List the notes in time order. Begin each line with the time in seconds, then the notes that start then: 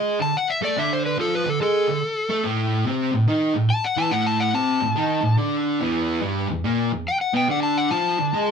Already playing: G#3 G#4
0.19 D3 A5
0.37 F#5
0.50 E5
0.61 A3 A4 D5
0.76 D3 D4 E5
0.93 C5
1.06 B4
1.18 F3 F4 A4
1.35 B4
1.46 D3
1.50 A4
1.60 G#3 G#4 A4
1.87 D3
2.30 A3 A4
2.44 A2 A3
2.86 C3 C4
3.13 A2
3.28 D#3 D#4
3.55 A2
3.70 A5
3.84 F#5
3.97 E3 E4 A5
4.11 A2 A3 F#5
4.27 A5
4.40 F#5
4.54 C3 C4 A5
4.81 A2
4.96 D#3 D#4
5.22 A2
5.38 D3 D4
5.80 E2 E3
6.22 G2 G3
6.49 E2
6.65 A#2 A#3
6.92 E2
7.08 G5
7.21 F#5
7.34 B2 B3 G5
7.49 D3 D4 F#5
7.63 A5
7.78 F#5
7.91 F3 F4 A5
8.18 D3
8.33 G#3 G#4